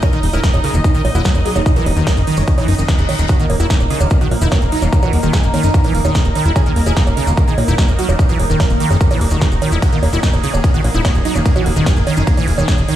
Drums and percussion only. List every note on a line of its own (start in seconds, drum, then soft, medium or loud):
0.02 kick loud
0.02 closed hi-hat medium
0.02 high bongo medium
0.02 maracas medium
0.13 closed hi-hat soft
0.13 maracas soft
0.23 open hi-hat loud
0.33 high bongo soft
0.33 maracas medium
0.44 kick loud
0.44 snare loud
0.44 closed hi-hat medium
0.44 maracas medium
0.54 closed hi-hat soft
0.54 high bongo medium
0.54 maracas soft
0.64 open hi-hat loud
0.74 closed hi-hat soft
0.74 maracas medium
0.84 kick loud
0.84 closed hi-hat medium
0.84 high bongo soft
0.84 maracas medium
0.95 closed hi-hat soft
0.95 maracas soft
1.05 open hi-hat loud
1.05 high bongo medium
1.15 closed hi-hat soft
1.15 maracas medium
1.25 kick loud
1.25 snare loud
1.25 closed hi-hat medium
1.25 maracas medium
1.34 closed hi-hat soft
1.34 high bongo soft
1.34 maracas soft
1.46 open hi-hat loud
1.56 high bongo medium
1.56 maracas medium
1.66 kick loud
1.66 closed hi-hat medium
1.66 maracas medium
1.76 closed hi-hat soft
1.76 maracas soft
1.86 open hi-hat loud
1.86 high bongo soft
1.96 closed hi-hat soft
1.96 maracas medium
2.07 kick loud
2.07 snare loud
2.07 closed hi-hat medium
2.07 high bongo medium
2.07 maracas medium
2.17 closed hi-hat soft
2.17 maracas soft
2.27 open hi-hat loud
2.37 high bongo soft
2.37 maracas medium
2.47 kick loud
2.47 closed hi-hat medium
2.47 maracas medium
2.58 open hi-hat medium
2.58 high bongo medium
2.58 maracas soft
2.68 open hi-hat loud
2.78 closed hi-hat soft
2.78 maracas medium
2.88 kick loud
2.88 snare loud
2.88 closed hi-hat medium
2.88 high bongo soft
2.88 maracas medium
2.98 closed hi-hat soft
2.98 maracas soft
3.09 open hi-hat loud
3.09 high bongo medium
3.19 closed hi-hat soft
3.19 maracas medium
3.29 kick loud
3.29 closed hi-hat medium
3.29 high bongo soft
3.29 maracas medium
3.39 closed hi-hat soft
3.39 maracas soft
3.50 open hi-hat loud
3.50 high bongo medium
3.60 closed hi-hat soft
3.60 maracas medium
3.70 kick loud
3.70 snare loud
3.70 closed hi-hat medium
3.70 maracas medium
3.80 closed hi-hat soft
3.80 high bongo soft
3.80 maracas soft
3.90 open hi-hat loud
4.00 high bongo medium
4.00 maracas medium
4.10 kick loud
4.10 closed hi-hat medium
4.10 maracas medium
4.21 closed hi-hat soft
4.21 maracas soft
4.31 open hi-hat loud
4.31 high bongo soft
4.41 maracas medium
4.52 kick loud
4.52 snare loud
4.52 closed hi-hat medium
4.52 high bongo medium
4.52 maracas medium
4.62 closed hi-hat soft
4.62 maracas soft
4.72 open hi-hat loud
4.82 closed hi-hat soft
4.82 high bongo soft
4.82 maracas medium
4.93 kick loud
4.93 closed hi-hat medium
4.93 maracas medium
5.02 closed hi-hat soft
5.02 high bongo medium
5.02 maracas soft
5.13 open hi-hat loud
5.23 maracas medium
5.33 kick loud
5.33 snare loud
5.33 closed hi-hat medium
5.33 high bongo soft
5.33 maracas medium
5.44 closed hi-hat soft
5.44 maracas soft
5.54 open hi-hat loud
5.54 high bongo medium
5.63 closed hi-hat soft
5.63 maracas medium
5.74 kick loud
5.74 closed hi-hat medium
5.74 maracas medium
5.84 open hi-hat medium
5.84 high bongo soft
5.84 maracas soft
5.95 open hi-hat loud
6.05 high bongo medium
6.05 maracas medium
6.15 kick loud
6.15 snare loud
6.15 closed hi-hat medium
6.15 maracas medium
6.25 closed hi-hat soft
6.25 maracas soft
6.35 open hi-hat loud
6.35 high bongo soft
6.45 closed hi-hat soft
6.45 maracas medium
6.56 kick loud
6.56 closed hi-hat medium
6.56 high bongo medium
6.56 maracas medium
6.66 closed hi-hat soft
6.66 maracas soft
6.76 open hi-hat loud
6.86 closed hi-hat soft
6.86 high bongo soft
6.86 maracas medium
6.97 kick loud
6.97 snare loud
6.97 closed hi-hat medium
6.97 maracas medium
7.07 closed hi-hat soft
7.07 high bongo medium
7.07 maracas soft
7.17 open hi-hat loud
7.27 maracas medium
7.37 kick loud
7.37 closed hi-hat medium
7.37 high bongo soft
7.37 maracas medium
7.48 closed hi-hat soft
7.48 maracas soft
7.58 open hi-hat loud
7.58 high bongo medium
7.68 closed hi-hat soft
7.68 maracas loud
7.78 kick loud
7.78 snare loud
7.78 closed hi-hat medium
7.78 maracas medium
7.88 closed hi-hat soft
7.88 high bongo soft
7.88 maracas soft
7.99 open hi-hat loud
8.09 high bongo medium
8.09 maracas medium
8.19 kick loud
8.19 closed hi-hat medium
8.19 maracas medium
8.29 closed hi-hat soft
8.29 maracas soft
8.39 open hi-hat loud
8.39 high bongo soft
8.50 closed hi-hat soft
8.50 maracas medium
8.60 kick loud
8.60 snare loud
8.60 closed hi-hat medium
8.60 high bongo medium
8.60 maracas medium
8.70 closed hi-hat soft
8.70 maracas soft
8.80 open hi-hat loud
8.90 high bongo soft
8.90 maracas medium
9.01 kick loud
9.01 closed hi-hat medium
9.01 maracas medium
9.10 open hi-hat medium
9.10 high bongo medium
9.10 maracas soft
9.21 open hi-hat loud
9.31 closed hi-hat soft
9.31 maracas medium
9.41 kick loud
9.41 snare loud
9.41 closed hi-hat medium
9.41 high bongo soft
9.41 maracas medium
9.52 closed hi-hat soft
9.52 maracas soft
9.62 open hi-hat loud
9.62 high bongo medium
9.72 maracas medium
9.82 kick loud
9.82 closed hi-hat medium
9.82 ride medium
9.82 high bongo soft
9.82 maracas medium
9.93 closed hi-hat soft
9.93 maracas soft
10.03 open hi-hat loud
10.03 high bongo medium
10.13 maracas medium
10.23 kick loud
10.23 snare loud
10.23 closed hi-hat medium
10.23 ride medium
10.23 maracas medium
10.33 closed hi-hat soft
10.33 high bongo soft
10.33 maracas soft
10.44 open hi-hat loud
10.54 closed hi-hat soft
10.54 high bongo medium
10.54 maracas medium
10.64 kick loud
10.64 closed hi-hat medium
10.64 ride medium
10.64 maracas medium
10.74 closed hi-hat soft
10.74 maracas soft
10.84 open hi-hat loud
10.84 high bongo soft
10.94 maracas medium
11.05 kick loud
11.05 snare loud
11.05 closed hi-hat medium
11.05 ride medium
11.05 high bongo medium
11.05 maracas medium
11.15 closed hi-hat soft
11.15 maracas soft
11.25 open hi-hat loud
11.35 closed hi-hat soft
11.35 high bongo soft
11.35 maracas medium
11.46 kick loud
11.46 closed hi-hat medium
11.46 ride medium
11.46 maracas medium
11.56 closed hi-hat soft
11.56 high bongo medium
11.56 maracas soft
11.66 open hi-hat loud
11.76 maracas medium
11.86 kick loud
11.86 snare loud
11.86 closed hi-hat medium
11.86 ride medium
11.86 high bongo soft
11.86 maracas medium
11.97 closed hi-hat soft
11.97 maracas soft
12.07 open hi-hat loud
12.07 high bongo medium
12.17 maracas medium
12.27 kick loud
12.27 closed hi-hat medium
12.27 ride medium
12.27 maracas medium
12.37 open hi-hat medium
12.37 high bongo soft
12.37 maracas soft
12.48 open hi-hat loud
12.58 closed hi-hat soft
12.58 high bongo medium
12.58 maracas medium
12.68 kick loud
12.68 snare loud
12.68 closed hi-hat medium
12.68 ride medium
12.68 maracas medium
12.78 closed hi-hat soft
12.78 maracas soft
12.88 open hi-hat loud
12.88 high bongo soft